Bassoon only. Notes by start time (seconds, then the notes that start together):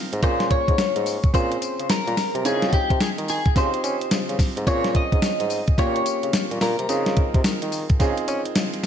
0.12 G#2
0.23 A#2
0.68 G#2
0.78 G#2
0.96 G#2
1.34 A#2
1.79 C#3
2.07 A#2
2.35 C3
2.45 C#3
2.90 C3
3.01 D#3
3.18 D#3
3.56 C#3
3.83 C#4
4.11 C#3
4.29 C#3
4.57 G#2
4.67 A#2
5.12 G#2
5.22 G#2
5.40 G#2
5.78 A#2
6.23 C#3
6.51 A#2
6.61 A#2
6.79 C3
6.89 C#3
7.34 C3
7.45 D#3
7.62 D#3
8.00 C#3
8.28 C#4
8.56 C#3